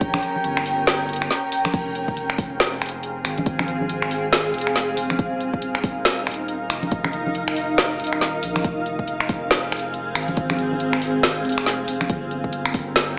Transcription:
Already playing: A#1 C#4 A#4 G5
0.01 kick, closed hi-hat
0.14 finger snap, high conga
0.23 closed hi-hat
0.36 high conga
0.44 G1, closed hi-hat
0.57 finger snap
0.66 open hi-hat
0.87 snare, closed hi-hat
1.09 closed hi-hat
1.13 closed hi-hat
1.16 closed hi-hat
1.22 finger snap
1.31 snare, closed hi-hat
1.52 open hi-hat
1.65 finger snap, closed hi-hat, high conga
1.74 F1 C4 G#4 F5, kick, closed hi-hat, crash
1.95 closed hi-hat
2.08 kick
2.17 F1, closed hi-hat
2.30 finger snap
2.38 kick, open hi-hat
2.60 snare, closed hi-hat
2.81 F1, finger snap, closed hi-hat
2.86 closed hi-hat
2.89 closed hi-hat
3.03 closed hi-hat
3.25 G#1, finger snap, open hi-hat
3.38 closed hi-hat, high conga
3.46 kick, closed hi-hat
3.59 finger snap, high conga
3.68 G#1, closed hi-hat
3.81 high conga
3.89 closed hi-hat
4.02 finger snap
4.11 open hi-hat
4.33 snare, closed hi-hat
4.54 F1, closed hi-hat
4.58 closed hi-hat
4.61 closed hi-hat
4.67 finger snap
4.76 snare, closed hi-hat
4.97 F1, open hi-hat
5.10 finger snap, closed hi-hat, high conga
5.19 D#1 D#4 A#4, kick, closed hi-hat
5.41 closed hi-hat
5.54 kick
5.62 D#1, closed hi-hat
5.75 finger snap
5.84 kick, open hi-hat
6.05 snare, closed hi-hat
6.27 D#1, finger snap, closed hi-hat
6.31 closed hi-hat
6.34 closed hi-hat
6.48 closed hi-hat
6.70 F1, finger snap, open hi-hat
6.83 closed hi-hat, high conga
6.92 kick, closed hi-hat
7.05 finger snap, high conga
7.13 F1, closed hi-hat
7.26 high conga
7.35 closed hi-hat
7.48 finger snap
7.56 open hi-hat
7.78 snare, closed hi-hat
8.00 D#1, closed hi-hat
8.04 closed hi-hat
8.07 closed hi-hat
8.13 finger snap
8.21 snare, closed hi-hat
8.43 A#1, open hi-hat
8.56 finger snap, closed hi-hat, high conga
8.64 F1 C4 G#4, kick, closed hi-hat
8.86 closed hi-hat
8.99 kick
9.08 F1, closed hi-hat
9.20 finger snap
9.29 kick, open hi-hat
9.51 snare, closed hi-hat
9.72 F1, finger snap, closed hi-hat
9.77 closed hi-hat
9.79 closed hi-hat
9.94 closed hi-hat
10.15 G#1, finger snap, open hi-hat
10.28 closed hi-hat, high conga
10.37 kick, closed hi-hat
10.50 finger snap, high conga
10.59 G#1, closed hi-hat
10.72 high conga
10.80 closed hi-hat
10.93 finger snap
11.02 open hi-hat
11.23 snare, closed hi-hat
11.45 F1, closed hi-hat
11.49 closed hi-hat
11.52 closed hi-hat
11.58 finger snap
11.66 snare, closed hi-hat
11.88 F1, open hi-hat
12.01 finger snap, closed hi-hat, high conga
12.09 G1 C#4 A#4 G5, kick, closed hi-hat
12.31 closed hi-hat
12.44 kick
12.53 G1, closed hi-hat
12.66 finger snap
12.74 kick, open hi-hat
12.96 snare, closed hi-hat

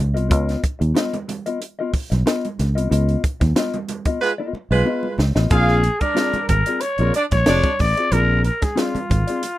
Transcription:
0.00 C#2
0.14 C2 B3 F4 A#4 D#5, closed hi-hat
0.29 C#2 B3 F4 A#4 D#5, kick, closed hi-hat
0.49 snare, closed hi-hat
0.63 kick, closed hi-hat, muted conga
0.79 D#2, muted clean electric guitar stroke, closed hi-hat
0.94 B3 F4 A#4 D#5, snare, closed hi-hat, muted conga, high conga
1.13 closed hi-hat, high conga, low conga
1.28 muted clean electric guitar stroke, closed hi-hat, muted conga, high conga, low conga
1.46 B3 F4 A#4 D#5, closed hi-hat
1.61 muted clean electric guitar stroke, closed hi-hat
1.79 B3 F4 A#4 D#5
1.93 muted clean electric guitar stroke, muted fingered electric bass stroke, kick, open hi-hat, muted conga
2.10 B1, muted clean electric guitar stroke, snare, closed hi-hat, high conga
2.26 B3 F4 A#4 D#5, snare, closed hi-hat
2.45 closed hi-hat, high conga
2.59 C#2, muted clean electric guitar stroke, snare, closed hi-hat, muted conga, low conga
2.75 C2 B3 F4 A#4 D#5, closed hi-hat
2.90 C#2 B3 F4 A#4 D#5, closed hi-hat
3.09 closed hi-hat
3.24 kick, closed hi-hat, muted conga
3.40 D#2, muted clean electric guitar stroke, kick, snare, closed hi-hat, high conga
3.56 B3 F4 A#4 D#5, snare, closed hi-hat, muted conga, high conga
3.74 closed hi-hat, high conga, low conga
3.88 muted clean electric guitar stroke, closed hi-hat, muted conga, high conga, low conga
4.05 B3 F4 A#4 D#5, kick, closed hi-hat
4.21 G#3 F4 B4, muted clean electric guitar stroke, muted conga
4.38 B3 F4 A#4 D#5
4.53 muted fingered electric bass stroke, muted clean electric guitar stroke, muted conga
4.71 B1 G#3 F4 B4, muted clean electric guitar stroke, high conga
4.85 B3 F4 A#4 D#5, muted conga
5.03 high conga
5.18 C#2, muted clean electric guitar stroke, snare, muted conga, low conga
5.35 A1 B3 F4 A#4 D#5, snare
5.50 A#1 C4 F4 G#4 D5 F5, kick, closed hi-hat, muted conga
5.68 snare
5.84 closed hi-hat, muted conga
6.00 D4 A#4 D5, muted clean electric guitar stroke, kick, closed hi-hat, high conga
6.15 C4 F4 G#4 D5, snare, closed hi-hat, high conga
6.33 muted fingered electric bass stroke, closed hi-hat, high conga, low conga
6.48 G#1 A#4, muted clean electric guitar stroke, kick, closed hi-hat, high conga
6.66 C4 F4 G#4 D5, closed hi-hat
6.81 C#5, muted clean electric guitar stroke, closed hi-hat
6.98 A#1 A#3 C4 F4 G#4 A#4 D5, closed hi-hat
7.14 D4 D5, muted clean electric guitar stroke, closed hi-hat, muted conga
7.31 A#1 C#5, muted clean electric guitar stroke, kick, snare, closed hi-hat, high conga
7.46 F1 C4 D4 F4 G#4 D5, snare, closed hi-hat
7.63 kick, closed hi-hat, high conga
7.79 A1 D5, muted clean electric guitar stroke, kick, snare, open hi-hat, muted conga, low conga
7.96 C4 F4 G#4 D5, closed hi-hat
8.12 A#1 C4 F4 G#4 A#4 D5, closed hi-hat, muted conga
8.44 A#4, closed hi-hat, muted conga
8.61 G#4, muted clean electric guitar stroke, kick, snare, closed hi-hat, high conga
8.76 C4 F4 G#4 D5, snare, closed hi-hat, muted conga, high conga
8.95 muted fingered electric bass stroke, closed hi-hat, high conga, low conga
9.10 G#1, muted clean electric guitar stroke, kick, closed hi-hat, high conga
9.27 C4 F4 G#4 D5, closed hi-hat
9.43 muted clean electric guitar stroke, closed hi-hat, muted conga

